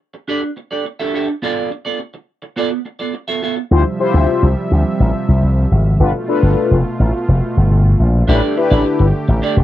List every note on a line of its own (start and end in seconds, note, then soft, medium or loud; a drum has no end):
0.14 muted clean electric guitar stroke soft
0.28 0.49 D4 medium
0.28 0.42 G4 medium
0.28 0.42 A4 medium
0.28 0.41 D5 medium
0.42 muted clean electric guitar stroke soft
0.57 muted clean electric guitar stroke soft
0.71 0.84 D4 soft
0.71 0.84 G4 medium
0.71 0.85 A4 medium
0.71 0.85 D5 medium
0.85 muted clean electric guitar stroke soft
0.99 1.13 D4 medium
0.99 1.13 G4 medium
0.99 1.14 A4 medium
0.99 1.14 E5 medium
1.14 1.31 D4 medium
1.14 1.28 G4 medium
1.14 1.28 A4 medium
1.14 1.28 E5 medium
1.28 muted clean electric guitar stroke medium
1.42 1.69 B3 medium
1.42 1.69 F4 loud
1.42 1.69 A4 medium
1.42 1.70 D5 loud
1.71 muted clean electric guitar stroke soft
1.85 1.98 B3 medium
1.85 1.99 F4 soft
1.85 1.99 A4 medium
1.85 1.99 D5 medium
1.99 muted clean electric guitar stroke soft
2.14 muted clean electric guitar stroke soft
2.42 muted clean electric guitar stroke soft
2.56 2.78 B3 loud
2.56 2.71 F4 medium
2.56 2.70 A4 medium
2.56 2.70 D5 loud
2.71 muted clean electric guitar stroke soft
2.85 muted clean electric guitar stroke soft
2.99 3.13 B3 medium
2.99 3.13 F4 soft
2.99 3.13 A4 medium
2.99 3.14 D5 medium
3.14 muted clean electric guitar stroke soft
3.28 3.41 B3 medium
3.28 3.42 F4 medium
3.28 3.42 A4 medium
3.28 3.43 E5 medium
3.42 3.59 B3 medium
3.42 3.56 F4 medium
3.42 3.56 A4 medium
3.42 3.56 E5 medium
3.56 muted clean electric guitar stroke soft
3.71 3.82 D2 loud
3.71 5.98 C3 medium
3.71 5.98 F3 medium
3.71 5.98 G3 medium
3.71 3.83 E4 medium
3.71 3.83 F4 medium
3.71 3.83 G4 medium
3.71 3.84 C5 loud
3.71 5.98 E5 medium
3.99 4.48 E4 medium
3.99 4.48 F4 medium
3.99 4.48 G4 medium
3.99 4.48 C5 loud
4.14 4.25 D2 medium
4.43 4.54 C2 loud
4.71 4.82 D2 medium
5.00 5.11 A1 medium
5.29 5.40 C2 medium
5.43 5.65 C2 medium
5.71 5.94 G#1 loud
5.99 6.11 G1 loud
5.99 8.26 B2 medium
5.99 8.26 A3 medium
5.99 6.12 D4 medium
5.99 6.12 F4 medium
5.99 8.26 F4 medium
5.99 6.12 A4 medium
5.99 6.12 B4 medium
6.28 6.77 D4 medium
6.28 6.77 F4 medium
6.28 6.77 A4 medium
6.28 6.77 B4 loud
6.43 6.54 G1 medium
6.71 6.82 F1 medium
7.00 7.11 A1 medium
7.28 7.39 F1 medium
7.57 7.68 G1 medium
7.71 7.93 G1 medium
8.00 8.22 A#1 medium
8.28 8.39 A1 loud
8.28 9.64 D3 medium
8.28 9.64 A3 medium
8.28 8.54 D4 medium
8.28 8.40 D4 medium
8.28 8.40 E4 medium
8.28 8.55 G4 loud
8.28 8.41 G4 medium
8.28 9.64 G4 medium
8.28 8.55 A4 loud
8.28 8.41 B4 loud
8.28 8.55 D5 loud
8.56 9.05 D4 medium
8.56 9.05 E4 medium
8.56 9.06 G4 medium
8.56 9.06 B4 loud
8.56 muted clean electric guitar stroke medium
8.71 8.82 A1 loud
8.71 8.84 D4 medium
8.71 8.84 G4 medium
8.71 8.85 A4 medium
8.71 8.85 D5 medium
8.85 muted clean electric guitar stroke soft
8.99 9.11 G1 medium
8.99 muted clean electric guitar stroke soft
9.28 9.39 A1 loud
9.28 muted clean electric guitar stroke soft
9.42 9.64 D4 medium
9.42 9.57 G4 medium
9.42 9.56 A4 medium
9.42 9.55 D5 loud
9.57 9.64 E1 loud
9.57 muted clean electric guitar stroke soft